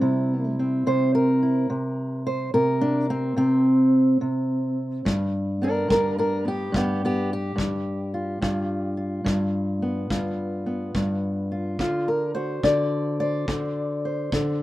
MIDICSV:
0, 0, Header, 1, 3, 480
1, 0, Start_track
1, 0, Tempo, 841515
1, 970, Time_signature, 4, 2, 24, 8
1, 8343, End_track
2, 0, Start_track
2, 0, Title_t, "Steel-string acoustic guitar"
2, 0, Program_c, 0, 25
2, 0, Note_on_c, 0, 55, 44
2, 0, Note_on_c, 0, 60, 87
2, 7, Note_on_c, 0, 48, 61
2, 10, Note_on_c, 0, 64, 47
2, 331, Note_off_c, 0, 60, 0
2, 339, Note_on_c, 0, 60, 40
2, 487, Note_off_c, 0, 48, 0
2, 494, Note_on_c, 0, 48, 66
2, 496, Note_on_c, 0, 72, 87
2, 653, Note_off_c, 0, 72, 0
2, 655, Note_on_c, 0, 70, 81
2, 806, Note_off_c, 0, 64, 0
2, 813, Note_on_c, 0, 64, 43
2, 952, Note_off_c, 0, 48, 0
2, 952, Note_off_c, 0, 64, 0
2, 954, Note_off_c, 0, 60, 0
2, 968, Note_on_c, 0, 48, 69
2, 1290, Note_off_c, 0, 70, 0
2, 1292, Note_on_c, 0, 72, 79
2, 1441, Note_off_c, 0, 48, 0
2, 1446, Note_off_c, 0, 72, 0
2, 1448, Note_on_c, 0, 48, 71
2, 1448, Note_on_c, 0, 70, 90
2, 1605, Note_on_c, 0, 62, 84
2, 1766, Note_off_c, 0, 62, 0
2, 1769, Note_on_c, 0, 60, 86
2, 1848, Note_off_c, 0, 55, 0
2, 1912, Note_off_c, 0, 48, 0
2, 1919, Note_off_c, 0, 60, 0
2, 1919, Note_on_c, 0, 48, 67
2, 1926, Note_on_c, 0, 60, 84
2, 2087, Note_off_c, 0, 70, 0
2, 2395, Note_off_c, 0, 48, 0
2, 2402, Note_on_c, 0, 48, 63
2, 2865, Note_off_c, 0, 48, 0
2, 2882, Note_on_c, 0, 43, 71
2, 2886, Note_off_c, 0, 60, 0
2, 3204, Note_on_c, 0, 59, 40
2, 3210, Note_on_c, 0, 62, 73
2, 3218, Note_on_c, 0, 70, 86
2, 3353, Note_off_c, 0, 43, 0
2, 3356, Note_on_c, 0, 43, 70
2, 3362, Note_off_c, 0, 62, 0
2, 3363, Note_off_c, 0, 70, 0
2, 3368, Note_on_c, 0, 62, 79
2, 3372, Note_on_c, 0, 70, 88
2, 3521, Note_off_c, 0, 62, 0
2, 3526, Note_off_c, 0, 70, 0
2, 3528, Note_on_c, 0, 62, 66
2, 3533, Note_on_c, 0, 70, 82
2, 3677, Note_off_c, 0, 59, 0
2, 3679, Note_on_c, 0, 59, 46
2, 3687, Note_off_c, 0, 62, 0
2, 3690, Note_off_c, 0, 70, 0
2, 3695, Note_on_c, 0, 67, 85
2, 3832, Note_off_c, 0, 43, 0
2, 3834, Note_on_c, 0, 43, 73
2, 3849, Note_off_c, 0, 59, 0
2, 3851, Note_off_c, 0, 67, 0
2, 3856, Note_on_c, 0, 59, 80
2, 3861, Note_on_c, 0, 67, 78
2, 4012, Note_off_c, 0, 59, 0
2, 4014, Note_off_c, 0, 67, 0
2, 4020, Note_on_c, 0, 59, 72
2, 4024, Note_on_c, 0, 67, 85
2, 4174, Note_off_c, 0, 59, 0
2, 4175, Note_off_c, 0, 67, 0
2, 4182, Note_on_c, 0, 67, 88
2, 4303, Note_off_c, 0, 43, 0
2, 4310, Note_on_c, 0, 43, 68
2, 4643, Note_on_c, 0, 65, 44
2, 4779, Note_off_c, 0, 43, 0
2, 4785, Note_off_c, 0, 65, 0
2, 4800, Note_on_c, 0, 43, 71
2, 4803, Note_on_c, 0, 65, 48
2, 5111, Note_off_c, 0, 65, 0
2, 5118, Note_on_c, 0, 65, 42
2, 5266, Note_off_c, 0, 43, 0
2, 5273, Note_on_c, 0, 43, 70
2, 5604, Note_on_c, 0, 59, 47
2, 5756, Note_off_c, 0, 43, 0
2, 5757, Note_off_c, 0, 65, 0
2, 5762, Note_on_c, 0, 43, 63
2, 5765, Note_on_c, 0, 65, 44
2, 6075, Note_off_c, 0, 59, 0
2, 6082, Note_on_c, 0, 59, 45
2, 6096, Note_off_c, 0, 67, 0
2, 6238, Note_off_c, 0, 43, 0
2, 6245, Note_on_c, 0, 43, 72
2, 6562, Note_off_c, 0, 65, 0
2, 6569, Note_on_c, 0, 65, 47
2, 6707, Note_off_c, 0, 59, 0
2, 6709, Note_off_c, 0, 43, 0
2, 6710, Note_off_c, 0, 65, 0
2, 6731, Note_on_c, 0, 50, 62
2, 6734, Note_on_c, 0, 65, 80
2, 6891, Note_off_c, 0, 65, 0
2, 6891, Note_on_c, 0, 70, 71
2, 7040, Note_off_c, 0, 70, 0
2, 7042, Note_on_c, 0, 72, 78
2, 7050, Note_on_c, 0, 66, 39
2, 7201, Note_off_c, 0, 50, 0
2, 7208, Note_on_c, 0, 50, 67
2, 7210, Note_on_c, 0, 74, 83
2, 7523, Note_off_c, 0, 74, 0
2, 7528, Note_off_c, 0, 72, 0
2, 7530, Note_on_c, 0, 74, 85
2, 7537, Note_on_c, 0, 72, 45
2, 7687, Note_off_c, 0, 50, 0
2, 7694, Note_off_c, 0, 72, 0
2, 7694, Note_on_c, 0, 50, 70
2, 7696, Note_on_c, 0, 72, 42
2, 8008, Note_off_c, 0, 72, 0
2, 8015, Note_on_c, 0, 72, 44
2, 8168, Note_off_c, 0, 50, 0
2, 8175, Note_on_c, 0, 50, 68
2, 8343, Note_off_c, 0, 50, 0
2, 8343, Note_off_c, 0, 66, 0
2, 8343, Note_off_c, 0, 72, 0
2, 8343, Note_off_c, 0, 74, 0
2, 8343, End_track
3, 0, Start_track
3, 0, Title_t, "Drums"
3, 2888, Note_on_c, 9, 36, 62
3, 2945, Note_off_c, 9, 36, 0
3, 3368, Note_on_c, 9, 36, 61
3, 3425, Note_off_c, 9, 36, 0
3, 3846, Note_on_c, 9, 36, 64
3, 3903, Note_off_c, 9, 36, 0
3, 4326, Note_on_c, 9, 36, 60
3, 4383, Note_off_c, 9, 36, 0
3, 4805, Note_on_c, 9, 36, 61
3, 4862, Note_off_c, 9, 36, 0
3, 5284, Note_on_c, 9, 36, 59
3, 5341, Note_off_c, 9, 36, 0
3, 5763, Note_on_c, 9, 36, 61
3, 5821, Note_off_c, 9, 36, 0
3, 6244, Note_on_c, 9, 36, 60
3, 6301, Note_off_c, 9, 36, 0
3, 6726, Note_on_c, 9, 36, 55
3, 6783, Note_off_c, 9, 36, 0
3, 7207, Note_on_c, 9, 36, 56
3, 7264, Note_off_c, 9, 36, 0
3, 7689, Note_on_c, 9, 36, 61
3, 7746, Note_off_c, 9, 36, 0
3, 8170, Note_on_c, 9, 36, 61
3, 8227, Note_off_c, 9, 36, 0
3, 8343, End_track
0, 0, End_of_file